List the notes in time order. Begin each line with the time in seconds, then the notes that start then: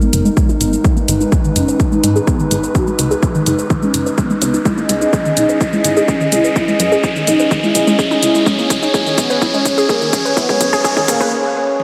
Already playing: G#3 D#4 A#4, riser
0.02 G#3 B3, shaker
0.13 F#1, closed hi-hat, shaker
0.25 G#3, shaker
0.37 G#3 G#4, kick, shaker
0.49 D#4, shaker
0.61 G#1 B3, closed hi-hat, shaker
0.73 G#3, shaker
0.84 G#3 D#4 B4, kick, shaker
0.97 A#3, shaker
1.08 G#1, closed hi-hat, shaker
1.21 D#4, shaker
1.32 G#4, kick, shaker
1.44 D#3, shaker
1.56 F#1 C#4, closed hi-hat, shaker
1.68 B4, shaker
1.80 D#4, kick, shaker
1.92 G#3 D#4, shaker
2.04 G#2, closed hi-hat, shaker
2.16 G#4, shaker
2.27 B3 G#4, kick, shaker
2.40 D#3, shaker
2.51 G#1 D#4, closed hi-hat, shaker
2.63 B4, shaker
2.75 D#4 F#4, kick, shaker
2.87 G#3, shaker
2.99 C#2, closed hi-hat, shaker
3.11 G#4, shaker
3.23 G#4, kick, shaker
3.35 D#3, shaker
3.46 F#1 D#4, closed hi-hat, shaker
3.59 B4, shaker
3.70 D#3, kick, shaker
3.83 G#3 C#4, shaker
3.94 F#1, closed hi-hat, shaker
4.06 B4, shaker
4.18 G#3 B3, kick, shaker
4.30 G#3, shaker
4.42 C#2 B3, closed hi-hat, shaker
4.54 D#4, shaker
4.65 G#3 C#4 E4 G#4 D#5, kick, shaker
4.78 A#3, shaker
4.89 C#2, closed hi-hat, shaker
5.02 D#4, shaker
5.13 G#4, kick, shaker
5.25 D#3, shaker
5.37 B1 D#4, closed hi-hat, shaker
5.49 B4, shaker
5.61 E4, kick, shaker
5.73 G#3 E4, shaker
5.84 G#1, closed hi-hat, shaker
5.97 G#4, shaker
6.08 C#4 G#4, kick, shaker
6.21 D#3, shaker
6.32 C#2 E4, closed hi-hat, shaker
6.44 B4, shaker
6.56 E4, kick, shaker
6.68 G#3, shaker
6.80 F#2, closed hi-hat, shaker
6.92 G#4, shaker
7.04 G#4, kick, shaker
7.16 D#3, shaker
7.27 B1 D#4, closed hi-hat, shaker
7.40 B4, shaker
7.51 D#3, kick, shaker
7.63 G#3 E4, shaker
7.75 B1, closed hi-hat, shaker
7.87 G#3, shaker
7.99 C#4 G#4, kick, shaker
8.11 D#4, shaker
8.23 C#2 E4, closed hi-hat, shaker
8.35 G#3, shaker
8.46 G#3 C#4 C#5, kick, shaker
8.59 A#3, shaker
8.70 C#2, kick, closed hi-hat, shaker
8.83 D#4, shaker
8.94 G#4, kick, shaker
9.06 D#3, shaker
9.18 B1 B3, kick, closed hi-hat, shaker
9.30 B4, shaker
9.42 E4, kick, shaker
9.54 G#3 C#4, shaker
9.65 G#1, kick, closed hi-hat, shaker
9.78 G#4, shaker
9.89 A#3 G#4, kick, shaker
10.02 D#3, shaker
10.13 C#2 C#4, kick, closed hi-hat, shaker
10.25 B4, shaker
10.37 B3 E4, kick, shaker
10.49 G#3, kick, shaker
10.61 F#2, kick, closed hi-hat, shaker
10.73 G#4, kick, shaker
10.84 G#4, kick, shaker
10.97 D#3, kick, shaker
11.08 B1 A#3, kick, closed hi-hat, shaker
11.21 B4, kick, shaker
11.80 high tom